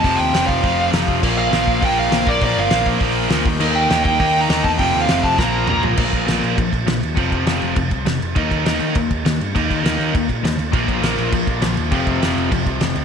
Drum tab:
CC |--------|x-------|--------|x-------|
HH |o-o-o-o-|--o-o-o-|o-o-o-o-|--o-o-o-|
SD |--o---o-|--o---o-|--o---o-|--o---o-|
T2 |--------|--------|--------|--------|
FT |--------|--------|--------|--------|
BD |o--oo--o|o--oo--o|o--oo--o|---oo--o|

CC |--------|xxxxxxxx|xxxxxxxx|xxxxxxxx|
HH |o-o-----|--------|--------|--------|
SD |--o-o---|--o---o-|--o---o-|--o---o-|
T2 |------o-|--------|--------|--------|
FT |-------o|--------|--------|--------|
BD |o--oo---|oo--oo--|oo--oo--|oo--oo--|

CC |xxxxxxxx|xxxxxxxx|xxxxxxxx|
HH |--------|--------|--------|
SD |--o---o-|--o---o-|--o---o-|
T2 |--------|--------|--------|
FT |--------|--------|--------|
BD |oo--oo--|oo--oo--|oo--oo--|